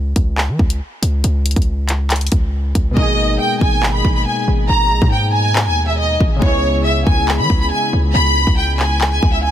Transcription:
Already playing: 808-style bass C#2
0.16 808-style bass C#2, kick, closed hi-hat
0.38 clap
0.48 808-style bass E3
0.59 808-style bass C#2, kick
0.70 closed hi-hat
1.02 808-style bass C#2, closed hi-hat
1.24 808-style bass C#2, closed hi-hat
1.46 closed hi-hat
1.51 closed hi-hat
1.56 808-style bass C#2, kick, closed hi-hat
1.62 closed hi-hat
1.89 clap, closed hi-hat
2.10 clap, closed hi-hat
2.16 closed hi-hat
2.21 closed hi-hat
2.27 closed hi-hat
2.32 808-style bass C#2, kick, closed hi-hat
2.75 808-style bass C#2, kick, closed hi-hat
2.91 synth keys B2 G#3
2.97 808-style bass G#1, synth keys A#3 D#4, violin section D#5, kick
3.02 synth keys G#4
3.40 violin section G5
3.61 808-style bass G#1, violin section G#5, kick
3.83 clap
3.94 violin section B5
4.05 808-style bass G#1, kick
4.15 violin section B5
4.26 violin section G#5
4.48 808-style bass G#1
4.69 808-style bass G#1, violin section A#5
4.91 808-style bass A#1
5.02 808-style bass G#2, kick
5.12 violin section G5
5.34 violin section G#5
5.56 clap
5.66 808-style bass D#2, violin section G#5
5.88 violin section E5
5.99 violin section D#5
6.20 808-style bass G#1, kick
6.36 synth keys C#3 G#3
6.42 808-style bass C#2, synth keys B3 E4, violin section C#5, kick
6.48 synth keys G#4
6.85 violin section E5
7.07 808-style bass C#2, violin section G#5, kick
7.28 clap
7.39 808-style bass E3, violin section B5
7.50 808-style bass C#2, kick
7.61 violin section B5
7.71 violin section G#5
7.93 808-style bass C#2
8.15 808-style bass C#2, violin section B5
8.47 808-style bass C#2, kick
8.58 violin section G5
8.79 violin section G#5, clap
9.01 clap
9.12 violin section G#5
9.23 808-style bass C#2, kick
9.33 violin section E5
9.44 violin section G#5

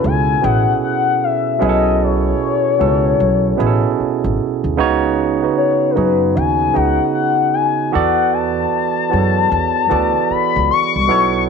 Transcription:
Already playing: tine electric piano B2 B3 C#4 E4 G#4 A4 B4
0.04 upright bass C#2, soft synth lead G#5
0.42 upright bass A1, tine electric piano B2 B3 C#4 E4 G#4, soft synth lead F#5
0.84 soft synth lead F#5
1.24 soft synth lead E5
1.59 upright bass B1, tine electric piano B2 B3 C#4 E4 G#4, soft synth lead D#5
1.69 tine electric piano A4
2.02 soft synth lead C#5
2.78 upright bass C#2, tine electric piano B2 B3 C#4 E4 A4
3.20 upright bass B1
3.57 upright bass A1, tine electric piano B2 B3 C#4 E4 G#4
3.67 tine electric piano A4
4.00 muted upright bass stroke
4.24 upright bass G#1
4.64 upright bass D2
4.77 upright bass C#2, tine electric piano C#3 B3 D#4 F#4 C#5
5.42 tine electric piano C#3 B3 D#4 F#4 B4
5.57 soft synth lead C#5
5.90 soft synth lead A#4
5.95 upright bass F#2, tine electric piano C#3 B3 D#4 F#4 G#4, soft synth lead B4
6.35 upright bass D#2, soft synth lead G#5
6.73 upright bass C#2, tine electric piano C#3 B3 D#4 F#4 D#5, soft synth lead F#5
7.15 soft synth lead F#5
7.54 soft synth lead G#5
7.92 upright bass E2, tine electric piano E3 B3 F#4 A4 D5, soft synth lead F#5
8.33 soft synth lead A5
9.10 upright bass F#2, tine electric piano E3 B3 F#4 G#4 C#5
9.18 tine electric piano A4
9.51 upright bass E2
9.89 upright bass D2, tine electric piano E3 B3 F#4 A4 D5
10.30 soft synth lead B5, muted upright bass stroke
10.56 upright bass C#2
10.71 soft synth lead C#6
10.96 upright bass C2
11.07 upright bass B1, tine electric piano B2 B3 E4 A4 C#5

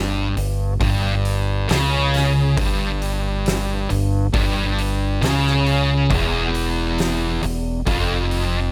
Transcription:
Already playing: fingered electric bass G1, distorted electric guitar G2
0.37 fingered electric bass G1, distorted electric guitar G2, open hi-hat
0.80 fingered electric bass G1, distorted electric guitar G2, kick, open hi-hat
1.25 open hi-hat
1.68 fingered electric bass C#2, distorted electric guitar C#3, snare, open hi-hat
2.14 snare, open hi-hat
2.57 fingered electric bass G1, distorted electric guitar G2, kick, open hi-hat
3.02 open hi-hat
3.46 snare, open hi-hat
3.89 fingered electric bass G1, distorted electric guitar G2, open hi-hat
4.34 fingered electric bass G1, distorted electric guitar G2, kick, open hi-hat
4.78 open hi-hat
5.22 fingered electric bass C#2, distorted electric guitar C#3, snare, open hi-hat
5.47 snare
5.66 open hi-hat
6.10 fingered electric bass E1, distorted electric guitar E2, kick, open hi-hat
6.54 open hi-hat
6.98 snare, open hi-hat
7.42 fingered electric bass E1, distorted electric guitar E2, open hi-hat
7.86 fingered electric bass F1, distorted electric guitar F2, kick, open hi-hat
8.31 open hi-hat

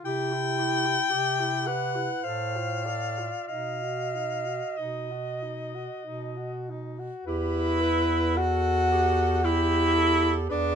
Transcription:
0.04 bass clarinet C3, clarinet E4, tenor saxophone G4, soprano saxophone G5
0.33 tenor saxophone E4
0.59 tenor saxophone G4
0.86 tenor saxophone E4
1.10 bass clarinet C3, clarinet G4, tenor saxophone G4
1.40 tenor saxophone E4
1.67 tenor saxophone G4, clarinet B4, soprano saxophone F#5
1.95 tenor saxophone E4
2.23 bass clarinet A2, tenor saxophone A4, clarinet C5, soprano saxophone F5
2.56 tenor saxophone F4
2.84 tenor saxophone A4, clarinet D5
3.18 tenor saxophone F4
3.47 bass clarinet B2, tenor saxophone D#4, clarinet D#5, soprano saxophone F5
3.83 tenor saxophone F#4
4.15 tenor saxophone D#4
4.46 tenor saxophone F#4
4.77 bass clarinet B2, tenor saxophone D#4, soprano saxophone D#5
5.11 tenor saxophone F#4
5.43 tenor saxophone D#4
5.75 tenor saxophone F#4
6.03 bass clarinet B2, tenor saxophone D#4
6.37 tenor saxophone F#4
6.69 tenor saxophone D#4
6.99 tenor saxophone F#4
7.25 bass clarinet E2, tenor saxophone E4, clarinet G4, soprano saxophone B4
7.80 clarinet B4
8.36 tenor saxophone F#4, soprano saxophone A4, clarinet A4
8.91 clarinet G4
9.44 tenor saxophone E4, soprano saxophone G4, clarinet G4
9.95 soprano saxophone A4
10.49 bass clarinet E2, tenor saxophone D4, clarinet G#4, soprano saxophone B4

